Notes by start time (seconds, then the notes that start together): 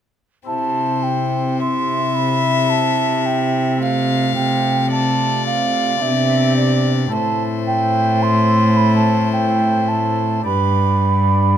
0.44 C3 C4 E4 C5 A5
1.03 G5
1.60 E5 C6
2.15 B5
2.70 A5
3.26 G5
3.77 A3 C4 F4 F5
3.82 F5
4.35 G5
4.91 D5 A5
5.46 F5
5.98 C3 B3 D4 G4 E5
6.03 C3
6.57 D5
7.07 C4 E4 A4 A5
7.11 A2 C5
7.67 G5
8.23 C6
8.77 B5
8.96 A5
9.32 G5
9.88 A5
10.42 G2 D4 G4 D5 B5
10.46 G2 B4